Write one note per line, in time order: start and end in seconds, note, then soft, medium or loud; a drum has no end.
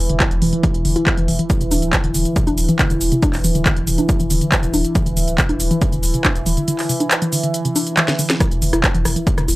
0.00 8.39 E3 medium
0.09 0.20 E1 medium
0.09 0.13 D3 medium
0.09 closed hi-hat medium
0.20 0.26 E4 loud
0.20 kick loud
0.20 clap loud
0.20 closed hi-hat medium
0.31 0.41 E1 medium
0.31 closed hi-hat medium
0.42 0.53 E1 loud
0.42 0.48 E3 loud
0.42 open hi-hat loud
0.53 0.58 E3 medium
0.53 closed hi-hat soft
0.63 0.69 E3 medium
0.63 kick loud
0.63 closed hi-hat medium
0.74 0.84 E1 medium
0.74 closed hi-hat soft
0.85 0.96 E1 loud
0.85 0.88 D3 medium
0.85 open hi-hat loud
0.96 1.01 E4 loud
0.96 closed hi-hat soft
1.07 kick loud
1.07 clap loud
1.07 closed hi-hat medium
1.17 1.28 E1 medium
1.17 1.23 E3 medium
1.17 closed hi-hat soft
1.28 1.39 E1 loud
1.28 1.34 E3 medium
1.28 open hi-hat loud
1.39 1.45 E3 medium
1.39 closed hi-hat medium
1.50 kick loud
1.50 closed hi-hat medium
1.50 shaker soft
1.61 1.71 D1 medium
1.61 1.64 C3 medium
1.61 closed hi-hat soft
1.61 shaker soft
1.71 1.82 D1 medium
1.71 1.77 D4 loud
1.71 open hi-hat loud
1.71 shaker medium
1.82 1.93 D1 medium
1.82 closed hi-hat medium
1.82 shaker soft
1.93 1.99 E3 loud
1.93 kick loud
1.93 clap loud
1.93 closed hi-hat medium
1.93 shaker soft
2.04 2.14 D1 medium
2.04 2.09 D3 medium
2.04 closed hi-hat medium
2.14 2.25 D1 loud
2.14 2.20 D3 medium
2.14 open hi-hat loud
2.14 shaker medium
2.25 closed hi-hat soft
2.25 shaker soft
2.36 2.40 C3 medium
2.36 kick loud
2.36 closed hi-hat medium
2.36 shaker soft
2.47 2.57 D1 medium
2.47 2.53 D4 loud
2.47 closed hi-hat soft
2.47 shaker soft
2.58 2.68 D1 loud
2.58 open hi-hat loud
2.58 shaker medium
2.69 2.74 E3 loud
2.69 closed hi-hat medium
2.69 shaker soft
2.79 2.85 D3 medium
2.79 kick loud
2.79 clap loud
2.79 closed hi-hat soft
2.79 shaker soft
2.90 3.00 D1 medium
2.90 2.96 D3 medium
2.90 closed hi-hat soft
2.90 shaker soft
3.01 3.12 D1 loud
3.01 open hi-hat loud
3.01 shaker medium
3.12 3.15 C3 medium
3.12 closed hi-hat medium
3.12 shaker soft
3.22 3.28 D4 loud
3.22 kick loud
3.22 closed hi-hat medium
3.22 shaker soft
3.33 3.43 D1 medium
3.33 clap soft
3.33 open hi-hat medium
3.33 shaker soft
3.44 3.54 D1 loud
3.44 3.50 E3 loud
3.44 open hi-hat loud
3.44 shaker medium
3.55 3.65 D1 medium
3.55 3.61 D3 medium
3.55 closed hi-hat medium
3.55 shaker soft
3.66 3.72 D3 medium
3.66 kick loud
3.66 clap loud
3.66 closed hi-hat medium
3.66 shaker soft
3.77 3.87 D1 medium
3.77 closed hi-hat medium
3.87 3.98 D1 loud
3.87 3.91 C3 medium
3.87 open hi-hat loud
3.87 shaker medium
3.98 4.04 D4 loud
3.98 closed hi-hat medium
3.98 shaker soft
4.09 kick loud
4.09 closed hi-hat medium
4.09 shaker soft
4.20 4.30 D1 medium
4.20 4.25 E3 loud
4.20 closed hi-hat soft
4.20 shaker soft
4.30 4.41 D1 loud
4.30 4.36 D3 medium
4.30 open hi-hat loud
4.30 shaker medium
4.41 4.47 D3 medium
4.41 closed hi-hat soft
4.41 shaker soft
4.52 kick loud
4.52 clap loud
4.52 closed hi-hat soft
4.52 shaker soft
4.63 4.73 D1 medium
4.63 4.66 C3 medium
4.63 closed hi-hat soft
4.63 shaker soft
4.74 4.84 D1 loud
4.74 4.79 D4 loud
4.74 open hi-hat loud
4.74 shaker medium
4.85 closed hi-hat medium
4.85 shaker soft
4.95 5.01 E3 loud
4.95 kick loud
4.95 closed hi-hat medium
4.95 shaker soft
5.06 5.16 D1 medium
5.06 5.12 D3 medium
5.06 closed hi-hat medium
5.06 shaker soft
5.17 5.27 D1 medium
5.17 5.22 D3 medium
5.17 open hi-hat loud
5.17 shaker medium
5.28 5.38 D1 medium
5.28 closed hi-hat medium
5.28 shaker soft
5.38 5.42 C3 medium
5.38 kick loud
5.38 clap loud
5.38 closed hi-hat medium
5.38 shaker soft
5.49 5.59 D1 medium
5.49 5.55 D4 loud
5.49 closed hi-hat medium
5.60 5.71 D1 medium
5.60 open hi-hat loud
5.60 shaker medium
5.71 5.76 E3 loud
5.71 closed hi-hat soft
5.71 shaker soft
5.81 5.87 D3 medium
5.81 kick loud
5.81 closed hi-hat medium
5.81 shaker soft
5.92 6.03 D1 medium
5.92 5.98 D3 medium
5.92 closed hi-hat medium
5.92 shaker soft
6.03 6.14 D1 loud
6.03 open hi-hat loud
6.03 shaker medium
6.14 6.17 C3 medium
6.14 closed hi-hat soft
6.14 shaker soft
6.25 6.30 D4 loud
6.25 kick loud
6.25 clap loud
6.25 closed hi-hat soft
6.25 shaker soft
6.36 6.46 D1 medium
6.36 closed hi-hat medium
6.36 shaker soft
6.46 6.57 D1 loud
6.46 6.52 E3 loud
6.46 open hi-hat loud
6.46 shaker medium
6.57 6.63 D3 medium
6.57 closed hi-hat medium
6.57 shaker soft
6.68 6.73 D3 medium
6.68 closed hi-hat medium
6.68 shaker soft
6.79 clap soft
6.79 open hi-hat medium
6.79 shaker soft
6.89 6.93 C3 medium
6.89 open hi-hat loud
6.89 shaker medium
7.00 7.06 D4 loud
7.00 closed hi-hat medium
7.00 shaker soft
7.11 clap loud
7.11 closed hi-hat medium
7.11 shaker soft
7.22 7.27 E3 medium
7.22 closed hi-hat medium
7.22 shaker soft
7.33 7.38 D3 medium
7.33 open hi-hat loud
7.33 shaker medium
7.43 7.49 D3 medium
7.43 closed hi-hat medium
7.43 shaker soft
7.54 closed hi-hat medium
7.54 shaker soft
7.65 7.68 C3 medium
7.65 closed hi-hat medium
7.65 shaker soft
7.76 7.81 D4 loud
7.76 open hi-hat loud
7.76 shaker medium
7.87 closed hi-hat medium
7.87 shaker soft
7.97 8.03 E3 loud
7.97 clap loud
7.97 closed hi-hat medium
7.97 shaker soft
8.08 8.14 D3 medium
8.08 snare medium
8.08 closed hi-hat soft
8.08 shaker soft
8.19 8.25 D3 medium
8.19 open hi-hat loud
8.19 shaker medium
8.30 snare medium
8.30 closed hi-hat medium
8.30 shaker soft
8.40 9.56 E3 medium
8.40 8.46 E3 medium
8.40 kick loud
8.40 cross-stick medium
8.40 closed hi-hat medium
8.40 shaker soft
8.51 8.61 E1 medium
8.51 closed hi-hat medium
8.51 shaker soft
8.62 8.72 E1 medium
8.62 8.65 D3 medium
8.62 open hi-hat loud
8.62 shaker medium
8.73 8.83 E1 medium
8.73 8.78 E4 loud
8.73 cross-stick medium
8.73 closed hi-hat medium
8.73 shaker soft
8.84 kick loud
8.84 clap loud
8.84 closed hi-hat medium
8.84 shaker soft
8.94 9.05 E1 medium
8.94 9.00 E3 medium
8.94 closed hi-hat medium
9.05 9.16 E1 loud
9.05 9.11 E3 medium
9.05 cross-stick medium
9.05 open hi-hat loud
9.05 shaker medium
9.16 9.22 E3 medium
9.16 closed hi-hat medium
9.16 shaker soft
9.27 kick loud
9.27 closed hi-hat medium
9.27 shaker soft
9.38 9.48 E1 medium
9.38 9.41 D3 medium
9.38 cross-stick medium
9.38 closed hi-hat medium
9.38 shaker soft
9.48 9.56 E1 loud
9.48 9.54 E4 loud
9.48 open hi-hat loud
9.48 shaker medium